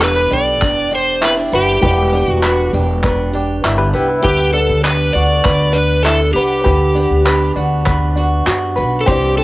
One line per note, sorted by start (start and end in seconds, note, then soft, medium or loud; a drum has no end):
0.00 0.28 E1 loud
0.00 1.78 G3 medium
0.00 1.51 B3 medium
0.00 0.30 D4 medium
0.00 0.61 D4 medium
0.00 1.79 E4 medium
0.00 0.16 G4 medium
0.00 0.15 A4 medium
0.00 0.31 B4 medium
0.00 0.48 D5 medium
0.00 1.80 D5 medium
0.00 clap loud
0.16 0.61 B4 soft
0.31 0.62 B1 medium
0.31 0.91 D4 medium
0.31 0.91 G4 medium
0.31 0.95 D5 loud
0.31 tambourine medium
0.61 1.49 E1 medium
0.61 1.21 D4 medium
0.61 kick loud
0.61 clap medium
0.91 2.13 D4 medium
0.91 2.73 G4 medium
0.91 tambourine medium
0.95 1.22 C5 loud
1.21 1.37 C4 medium
1.21 3.04 E4 medium
1.21 1.33 B4 medium
1.21 clap loud
1.37 2.41 D4 medium
1.52 1.81 F#1 medium
1.52 1.82 B3 medium
1.52 2.31 G4 medium
1.52 1.83 B4 medium
1.52 tambourine medium
1.81 2.25 E1 loud
1.81 4.20 G3 medium
1.81 2.12 B3 medium
1.81 4.21 E4 medium
1.81 2.43 G4 medium
1.81 2.43 B4 medium
1.81 kick loud
1.86 4.22 D5 medium
2.12 3.93 B3 medium
2.12 2.74 D4 medium
2.12 tambourine medium
2.28 2.70 E1 loud
2.28 2.71 F#4 medium
2.43 3.03 D4 medium
2.43 3.04 B4 medium
2.43 clap loud
2.73 3.60 E1 loud
2.73 3.34 D4 medium
2.73 3.33 G4 medium
2.73 tambourine medium
3.03 3.63 D4 medium
3.03 3.64 B4 medium
3.03 kick loud
3.03 clap medium
3.33 4.23 D4 medium
3.33 5.14 G4 medium
3.33 tambourine medium
3.64 3.92 G1 loud
3.64 4.84 D4 medium
3.64 3.93 E4 medium
3.64 clap loud
3.78 3.93 G4 medium
3.78 3.93 B4 medium
3.93 4.24 C2 medium
3.93 4.53 B3 medium
3.93 4.08 E4 medium
3.93 4.09 G4 medium
3.93 4.24 B4 medium
3.93 tambourine medium
4.09 4.38 E4 medium
4.22 4.66 D2 loud
4.22 6.61 G3 medium
4.22 4.53 G4 medium
4.22 4.82 B4 medium
4.22 6.62 F#5 medium
4.22 kick loud
4.26 6.63 B4 medium
4.53 6.34 B3 medium
4.53 5.14 D4 medium
4.53 4.84 A4 medium
4.53 tambourine medium
4.70 5.11 D2 medium
4.83 5.44 D4 medium
4.83 5.43 B4 medium
4.83 5.13 B4 medium
4.83 clap loud
5.13 5.43 D2 medium
5.13 5.75 D4 medium
5.13 5.75 F#4 medium
5.13 5.76 D5 loud
5.13 tambourine medium
5.44 6.32 D2 medium
5.44 6.05 D4 medium
5.44 6.35 B4 medium
5.44 kick loud
5.44 clap medium
5.73 6.94 D4 medium
5.73 6.05 B4 medium
5.73 tambourine medium
6.03 7.26 D4 medium
6.03 6.19 E4 medium
6.03 6.33 A4 loud
6.03 clap loud
6.33 6.63 C2 medium
6.33 6.95 B3 medium
6.33 7.52 G4 medium
6.33 6.63 B4 medium
6.33 tambourine medium
6.64 7.08 D2 loud
6.64 8.46 G4 medium
6.64 9.03 G4 medium
6.64 7.24 B4 medium
6.64 9.05 B4 medium
6.64 9.04 F#5 medium
6.64 kick loud
6.95 8.76 B3 medium
6.95 7.55 D4 medium
6.95 tambourine medium
7.10 7.53 D2 medium
7.25 7.87 D4 medium
7.25 7.84 B4 medium
7.25 clap loud
7.56 8.43 D2 medium
7.56 8.15 D4 medium
7.56 8.16 F#4 medium
7.56 tambourine medium
7.86 8.47 D4 medium
7.86 8.75 B4 medium
7.86 kick loud
7.86 clap medium
8.16 9.37 D4 medium
8.16 9.14 F#4 medium
8.16 tambourine medium
8.46 8.80 F#2 medium
8.46 9.41 D4 medium
8.46 9.13 F#4 medium
8.46 clap loud
8.76 9.06 B1 medium
8.76 9.14 B3 medium
8.76 9.07 B4 medium
8.76 tambourine medium
9.01 9.08 A4 medium
9.06 9.44 C2 loud
9.06 9.44 E3 medium
9.06 9.44 C4 medium
9.06 9.44 E4 medium
9.06 9.44 G4 medium
9.06 9.38 G4 medium
9.06 9.44 C5 medium
9.06 kick loud
9.11 9.44 D5 medium
9.37 9.44 C4 medium
9.37 9.44 D4 medium
9.37 9.44 A4 medium
9.37 tambourine medium